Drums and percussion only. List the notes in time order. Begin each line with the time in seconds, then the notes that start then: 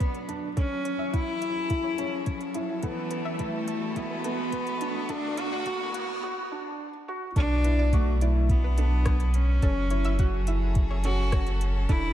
0.00 kick, closed hi-hat
0.14 closed hi-hat
0.29 closed hi-hat
0.57 kick, closed hi-hat
0.85 closed hi-hat
1.14 kick, closed hi-hat
1.42 closed hi-hat
1.70 kick, closed hi-hat
1.98 closed hi-hat
2.26 kick, closed hi-hat
2.41 closed hi-hat
2.54 closed hi-hat
2.83 kick, closed hi-hat
3.11 closed hi-hat
3.39 kick, closed hi-hat
3.68 closed hi-hat
3.96 kick, closed hi-hat
4.24 closed hi-hat
4.52 kick, closed hi-hat
4.67 closed hi-hat
4.81 closed hi-hat
5.09 kick, closed hi-hat
5.37 closed hi-hat
5.66 kick, closed hi-hat
5.94 closed hi-hat
7.36 kick, closed hi-hat
7.64 closed hi-hat
7.93 kick, closed hi-hat
8.21 closed hi-hat
8.49 kick, closed hi-hat
8.78 closed hi-hat
9.06 kick, cross-stick, closed hi-hat
9.20 closed hi-hat
9.34 closed hi-hat
9.62 kick, closed hi-hat
9.90 closed hi-hat
10.04 closed hi-hat
10.19 kick, closed hi-hat
10.47 closed hi-hat
10.75 kick, closed hi-hat
11.04 closed hi-hat
11.32 kick, cross-stick, closed hi-hat
11.47 closed hi-hat
11.61 closed hi-hat
11.89 kick, closed hi-hat